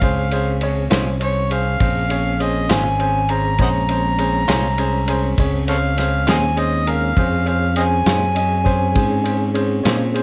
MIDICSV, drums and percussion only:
0, 0, Header, 1, 2, 480
1, 0, Start_track
1, 0, Key_signature, -5, "minor"
1, 0, Tempo, 596421
1, 16, Time_signature, 12, 3, 24, 8
1, 8232, End_track
2, 0, Start_track
2, 0, Title_t, "Drums"
2, 12, Note_on_c, 9, 51, 62
2, 14, Note_on_c, 9, 36, 87
2, 93, Note_off_c, 9, 51, 0
2, 94, Note_off_c, 9, 36, 0
2, 253, Note_on_c, 9, 51, 60
2, 333, Note_off_c, 9, 51, 0
2, 491, Note_on_c, 9, 51, 56
2, 571, Note_off_c, 9, 51, 0
2, 730, Note_on_c, 9, 51, 77
2, 739, Note_on_c, 9, 38, 98
2, 810, Note_off_c, 9, 51, 0
2, 820, Note_off_c, 9, 38, 0
2, 971, Note_on_c, 9, 51, 61
2, 1052, Note_off_c, 9, 51, 0
2, 1214, Note_on_c, 9, 51, 54
2, 1295, Note_off_c, 9, 51, 0
2, 1450, Note_on_c, 9, 51, 77
2, 1453, Note_on_c, 9, 36, 106
2, 1531, Note_off_c, 9, 51, 0
2, 1533, Note_off_c, 9, 36, 0
2, 1691, Note_on_c, 9, 51, 62
2, 1771, Note_off_c, 9, 51, 0
2, 1932, Note_on_c, 9, 51, 52
2, 2013, Note_off_c, 9, 51, 0
2, 2169, Note_on_c, 9, 51, 82
2, 2179, Note_on_c, 9, 38, 107
2, 2250, Note_off_c, 9, 51, 0
2, 2259, Note_off_c, 9, 38, 0
2, 2412, Note_on_c, 9, 51, 51
2, 2492, Note_off_c, 9, 51, 0
2, 2646, Note_on_c, 9, 51, 54
2, 2727, Note_off_c, 9, 51, 0
2, 2885, Note_on_c, 9, 51, 68
2, 2890, Note_on_c, 9, 36, 92
2, 2966, Note_off_c, 9, 51, 0
2, 2970, Note_off_c, 9, 36, 0
2, 3129, Note_on_c, 9, 51, 60
2, 3209, Note_off_c, 9, 51, 0
2, 3368, Note_on_c, 9, 51, 57
2, 3449, Note_off_c, 9, 51, 0
2, 3609, Note_on_c, 9, 51, 81
2, 3619, Note_on_c, 9, 38, 100
2, 3690, Note_off_c, 9, 51, 0
2, 3699, Note_off_c, 9, 38, 0
2, 3847, Note_on_c, 9, 51, 68
2, 3927, Note_off_c, 9, 51, 0
2, 4086, Note_on_c, 9, 51, 63
2, 4167, Note_off_c, 9, 51, 0
2, 4328, Note_on_c, 9, 51, 84
2, 4329, Note_on_c, 9, 36, 101
2, 4409, Note_off_c, 9, 51, 0
2, 4410, Note_off_c, 9, 36, 0
2, 4571, Note_on_c, 9, 51, 59
2, 4651, Note_off_c, 9, 51, 0
2, 4810, Note_on_c, 9, 51, 59
2, 4820, Note_on_c, 9, 38, 30
2, 4891, Note_off_c, 9, 51, 0
2, 4900, Note_off_c, 9, 38, 0
2, 5049, Note_on_c, 9, 51, 79
2, 5059, Note_on_c, 9, 38, 109
2, 5130, Note_off_c, 9, 51, 0
2, 5140, Note_off_c, 9, 38, 0
2, 5289, Note_on_c, 9, 51, 52
2, 5369, Note_off_c, 9, 51, 0
2, 5530, Note_on_c, 9, 51, 58
2, 5610, Note_off_c, 9, 51, 0
2, 5768, Note_on_c, 9, 51, 62
2, 5769, Note_on_c, 9, 36, 91
2, 5849, Note_off_c, 9, 36, 0
2, 5849, Note_off_c, 9, 51, 0
2, 6006, Note_on_c, 9, 51, 47
2, 6087, Note_off_c, 9, 51, 0
2, 6244, Note_on_c, 9, 51, 55
2, 6325, Note_off_c, 9, 51, 0
2, 6488, Note_on_c, 9, 51, 70
2, 6497, Note_on_c, 9, 38, 103
2, 6568, Note_off_c, 9, 51, 0
2, 6578, Note_off_c, 9, 38, 0
2, 6726, Note_on_c, 9, 51, 59
2, 6807, Note_off_c, 9, 51, 0
2, 6969, Note_on_c, 9, 36, 66
2, 6969, Note_on_c, 9, 51, 53
2, 7049, Note_off_c, 9, 36, 0
2, 7050, Note_off_c, 9, 51, 0
2, 7207, Note_on_c, 9, 51, 80
2, 7209, Note_on_c, 9, 36, 117
2, 7287, Note_off_c, 9, 51, 0
2, 7289, Note_off_c, 9, 36, 0
2, 7448, Note_on_c, 9, 51, 59
2, 7528, Note_off_c, 9, 51, 0
2, 7688, Note_on_c, 9, 51, 58
2, 7768, Note_off_c, 9, 51, 0
2, 7929, Note_on_c, 9, 51, 81
2, 7939, Note_on_c, 9, 38, 94
2, 8010, Note_off_c, 9, 51, 0
2, 8020, Note_off_c, 9, 38, 0
2, 8172, Note_on_c, 9, 51, 50
2, 8232, Note_off_c, 9, 51, 0
2, 8232, End_track
0, 0, End_of_file